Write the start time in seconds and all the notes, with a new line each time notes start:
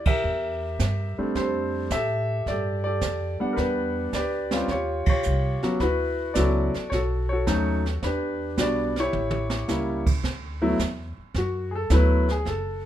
Already playing: D2 E4
0.05 G4 A#4 E5, kick, ride
0.24 E2, brush sweep
0.79 G2, kick, snare, hi-hat pedal
1.18 G3 A3 C4 D4, muted upright bass stroke
1.35 F2 G4 A4 C5, brush sweep, kick, snare
1.90 A2 G4 A4 E5, kick, snare, hi-hat pedal
2.46 G2 G4 A4 D5, brush sweep, kick, snare
2.84 G4 A4 D5
3.01 F2, kick, snare, hi-hat pedal
3.40 G3 B3 D4 F#5, muted upright bass stroke
3.53 A#4 B4
3.57 E2 D4 G4, brush sweep, kick, snare
4.13 D2 G4 B4 D5, kick, snare, hi-hat pedal
4.51 G3 C4 C#4 F4, snare
4.68 D#2 F4 G4 C#5, brush sweep, kick, snare
5.06 C#5, kick, ride
5.10 F4 G4
5.23 C2, hi-hat pedal
5.63 F#3 B3 C#4 F#4, muted upright bass stroke, snare
5.80 D2 E4 F#4 B4, brush sweep, kick, snare
6.34 C#2 F#3 B3 C#4 E4 A4 D5, kick, snare, hi-hat pedal
6.38 F#4
6.74 muted upright bass stroke, snare
6.90 B1 C#5, brush sweep, kick, snare
6.94 F#4 A4
7.29 F#4 A4 C#5
7.47 D#2 F#3 A3 C#4 D#4, kick, snare, hi-hat pedal
7.86 snare
8.02 E2 D4 G4 B4, brush sweep, kick, snare
8.57 B1 G3 B3 D4 F#4 D5, kick, snare, hi-hat pedal
8.96 E4 G4 C#5, snare
9.13 A1, mid tom
9.31 mid tom
9.50 snare
9.68 C#2 G3 A#3 C#4 E4, snare, hi-hat pedal
10.06 kick, crash
10.23 D2, brush sweep, kick, snare
10.62 F#3 A3 B3 E4
10.79 E2, kick, snare, hi-hat pedal
11.18 muted upright bass stroke
11.34 F#2 F#4, brush sweep, kick, snare
11.71 G#4
11.75 A4
11.90 D2 F#3 A3 B3 E4 B4, kick, snare, hi-hat pedal
12.29 G#4, snare
12.45 F#1 A4, brush sweep, kick, snare